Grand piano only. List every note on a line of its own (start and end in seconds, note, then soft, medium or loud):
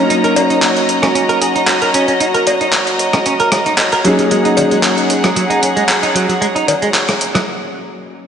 0.00 4.01 F#3 medium
0.00 4.02 A#3 medium
0.00 4.02 C#4 medium
0.00 4.02 D#4 medium
0.00 4.02 A#4 medium
4.04 8.22 F#3 medium
4.04 8.23 A#3 medium
4.04 8.23 C#4 medium
4.04 8.23 D#4 medium
4.04 8.24 G#4 medium